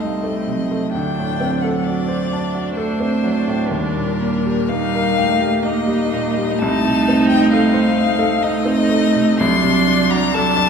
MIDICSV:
0, 0, Header, 1, 5, 480
1, 0, Start_track
1, 0, Tempo, 921659
1, 482, Time_signature, 3, 2, 24, 8
1, 1915, Tempo, 1015228
1, 2395, Tempo, 925926
1, 2875, Tempo, 983607
1, 3355, Tempo, 904977
1, 4315, Tempo, 983607
1, 4795, Tempo, 938967
1, 5458, End_track
2, 0, Start_track
2, 0, Title_t, "Violin"
2, 0, Program_c, 0, 40
2, 0, Note_on_c, 0, 75, 63
2, 474, Note_off_c, 0, 75, 0
2, 477, Note_on_c, 0, 79, 79
2, 842, Note_on_c, 0, 78, 63
2, 850, Note_off_c, 0, 79, 0
2, 960, Note_on_c, 0, 74, 74
2, 968, Note_off_c, 0, 78, 0
2, 1427, Note_off_c, 0, 74, 0
2, 1430, Note_on_c, 0, 72, 71
2, 1916, Note_on_c, 0, 70, 79
2, 1923, Note_off_c, 0, 72, 0
2, 2393, Note_on_c, 0, 77, 97
2, 2400, Note_off_c, 0, 70, 0
2, 2879, Note_on_c, 0, 75, 80
2, 2886, Note_off_c, 0, 77, 0
2, 3349, Note_on_c, 0, 81, 99
2, 3356, Note_off_c, 0, 75, 0
2, 3718, Note_off_c, 0, 81, 0
2, 3720, Note_on_c, 0, 79, 96
2, 3837, Note_off_c, 0, 79, 0
2, 3842, Note_on_c, 0, 77, 94
2, 4320, Note_on_c, 0, 75, 104
2, 4328, Note_off_c, 0, 77, 0
2, 4792, Note_off_c, 0, 75, 0
2, 4795, Note_on_c, 0, 84, 108
2, 5158, Note_on_c, 0, 82, 106
2, 5166, Note_off_c, 0, 84, 0
2, 5280, Note_on_c, 0, 81, 122
2, 5287, Note_off_c, 0, 82, 0
2, 5458, Note_off_c, 0, 81, 0
2, 5458, End_track
3, 0, Start_track
3, 0, Title_t, "Viola"
3, 0, Program_c, 1, 41
3, 0, Note_on_c, 1, 60, 43
3, 468, Note_off_c, 1, 60, 0
3, 480, Note_on_c, 1, 62, 50
3, 946, Note_off_c, 1, 62, 0
3, 954, Note_on_c, 1, 62, 60
3, 2377, Note_off_c, 1, 62, 0
3, 2398, Note_on_c, 1, 63, 67
3, 2868, Note_off_c, 1, 63, 0
3, 2871, Note_on_c, 1, 63, 59
3, 3345, Note_off_c, 1, 63, 0
3, 3355, Note_on_c, 1, 63, 79
3, 4294, Note_off_c, 1, 63, 0
3, 4316, Note_on_c, 1, 63, 75
3, 4796, Note_on_c, 1, 62, 81
3, 4803, Note_off_c, 1, 63, 0
3, 5274, Note_off_c, 1, 62, 0
3, 5277, Note_on_c, 1, 62, 80
3, 5458, Note_off_c, 1, 62, 0
3, 5458, End_track
4, 0, Start_track
4, 0, Title_t, "Grand piano"
4, 0, Program_c, 2, 0
4, 0, Control_c, 2, 64, 127
4, 0, Note_on_c, 2, 36, 53
4, 0, Note_on_c, 2, 48, 39
4, 0, Note_on_c, 2, 63, 36
4, 0, Note_on_c, 2, 69, 41
4, 0, Note_on_c, 2, 75, 43
4, 0, Note_on_c, 2, 81, 43
4, 2, Note_off_c, 2, 63, 0
4, 2, Note_on_c, 2, 63, 45
4, 70, Note_off_c, 2, 69, 0
4, 122, Note_on_c, 2, 57, 42
4, 193, Note_off_c, 2, 63, 0
4, 246, Note_off_c, 2, 48, 0
4, 246, Note_on_c, 2, 48, 33
4, 314, Note_off_c, 2, 57, 0
4, 370, Note_on_c, 2, 57, 43
4, 437, Note_off_c, 2, 48, 0
4, 464, Note_off_c, 2, 36, 0
4, 487, Note_off_c, 2, 57, 0
4, 491, Control_c, 2, 64, 0
4, 491, Note_on_c, 2, 38, 53
4, 494, Note_off_c, 2, 75, 0
4, 494, Note_off_c, 2, 81, 0
4, 575, Control_c, 2, 64, 127
4, 618, Note_on_c, 2, 45, 42
4, 732, Note_on_c, 2, 60, 49
4, 801, Note_off_c, 2, 45, 0
4, 855, Note_on_c, 2, 69, 42
4, 915, Note_off_c, 2, 60, 0
4, 974, Note_on_c, 2, 66, 40
4, 1034, Note_off_c, 2, 69, 0
4, 1085, Note_on_c, 2, 72, 49
4, 1153, Note_off_c, 2, 66, 0
4, 1213, Note_on_c, 2, 81, 49
4, 1268, Note_off_c, 2, 72, 0
4, 1325, Note_on_c, 2, 66, 45
4, 1392, Note_off_c, 2, 81, 0
4, 1443, Note_on_c, 2, 69, 51
4, 1508, Note_off_c, 2, 66, 0
4, 1562, Note_on_c, 2, 60, 43
4, 1628, Note_off_c, 2, 69, 0
4, 1686, Note_on_c, 2, 54, 43
4, 1749, Note_off_c, 2, 60, 0
4, 1809, Note_on_c, 2, 45, 45
4, 1874, Note_off_c, 2, 54, 0
4, 1900, Note_off_c, 2, 38, 0
4, 1924, Note_off_c, 2, 45, 0
4, 1926, Control_c, 2, 64, 0
4, 1931, Note_on_c, 2, 39, 61
4, 1996, Control_c, 2, 64, 127
4, 2048, Note_on_c, 2, 46, 46
4, 2168, Note_on_c, 2, 58, 54
4, 2238, Note_off_c, 2, 46, 0
4, 2284, Note_on_c, 2, 67, 47
4, 2356, Note_off_c, 2, 58, 0
4, 2401, Note_on_c, 2, 58, 49
4, 2475, Note_off_c, 2, 67, 0
4, 2527, Note_on_c, 2, 70, 55
4, 2595, Note_off_c, 2, 58, 0
4, 2647, Note_on_c, 2, 79, 55
4, 2714, Note_off_c, 2, 70, 0
4, 2762, Note_on_c, 2, 67, 50
4, 2832, Note_off_c, 2, 79, 0
4, 2881, Note_on_c, 2, 58, 61
4, 2948, Note_off_c, 2, 67, 0
4, 2997, Note_on_c, 2, 55, 47
4, 3067, Note_off_c, 2, 58, 0
4, 3124, Note_on_c, 2, 46, 50
4, 3191, Note_off_c, 2, 55, 0
4, 3242, Note_on_c, 2, 55, 58
4, 3315, Note_off_c, 2, 46, 0
4, 3345, Note_off_c, 2, 39, 0
4, 3359, Note_off_c, 2, 55, 0
4, 3364, Note_on_c, 2, 36, 78
4, 3367, Control_c, 2, 64, 0
4, 3442, Control_c, 2, 64, 127
4, 3486, Note_on_c, 2, 48, 54
4, 3611, Note_on_c, 2, 60, 61
4, 3676, Note_off_c, 2, 48, 0
4, 3728, Note_on_c, 2, 63, 61
4, 3797, Note_off_c, 2, 60, 0
4, 3848, Note_on_c, 2, 69, 57
4, 3914, Note_off_c, 2, 63, 0
4, 3957, Note_on_c, 2, 72, 67
4, 4033, Note_off_c, 2, 69, 0
4, 4082, Note_on_c, 2, 75, 66
4, 4147, Note_off_c, 2, 72, 0
4, 4196, Note_on_c, 2, 69, 58
4, 4271, Note_off_c, 2, 75, 0
4, 4318, Note_on_c, 2, 63, 61
4, 4385, Note_off_c, 2, 69, 0
4, 4433, Note_on_c, 2, 60, 60
4, 4505, Note_off_c, 2, 63, 0
4, 4548, Note_on_c, 2, 57, 57
4, 4628, Note_off_c, 2, 60, 0
4, 4679, Note_on_c, 2, 48, 57
4, 4747, Note_off_c, 2, 57, 0
4, 4780, Note_off_c, 2, 36, 0
4, 4798, Note_off_c, 2, 48, 0
4, 4798, Note_on_c, 2, 36, 82
4, 4807, Control_c, 2, 64, 0
4, 4903, Control_c, 2, 64, 127
4, 4919, Note_on_c, 2, 48, 60
4, 5035, Note_on_c, 2, 62, 68
4, 5111, Note_off_c, 2, 48, 0
4, 5155, Note_on_c, 2, 66, 58
4, 5228, Note_off_c, 2, 62, 0
4, 5280, Note_on_c, 2, 69, 66
4, 5348, Note_off_c, 2, 66, 0
4, 5393, Note_on_c, 2, 74, 68
4, 5458, Note_off_c, 2, 36, 0
4, 5458, Note_off_c, 2, 69, 0
4, 5458, Note_off_c, 2, 74, 0
4, 5458, End_track
5, 0, Start_track
5, 0, Title_t, "Cello"
5, 0, Program_c, 3, 42
5, 0, Note_on_c, 3, 55, 53
5, 244, Note_on_c, 3, 54, 52
5, 252, Note_off_c, 3, 55, 0
5, 1432, Note_off_c, 3, 54, 0
5, 1435, Note_on_c, 3, 57, 54
5, 1920, Note_on_c, 3, 55, 55
5, 1927, Note_off_c, 3, 57, 0
5, 2399, Note_off_c, 3, 55, 0
5, 2403, Note_on_c, 3, 55, 67
5, 2639, Note_off_c, 3, 55, 0
5, 2652, Note_on_c, 3, 57, 67
5, 2880, Note_on_c, 3, 58, 64
5, 2888, Note_off_c, 3, 57, 0
5, 3354, Note_off_c, 3, 58, 0
5, 3357, Note_on_c, 3, 57, 65
5, 4296, Note_off_c, 3, 57, 0
5, 4315, Note_on_c, 3, 57, 74
5, 4796, Note_on_c, 3, 54, 78
5, 4804, Note_off_c, 3, 57, 0
5, 5276, Note_off_c, 3, 54, 0
5, 5279, Note_on_c, 3, 54, 77
5, 5458, Note_off_c, 3, 54, 0
5, 5458, End_track
0, 0, End_of_file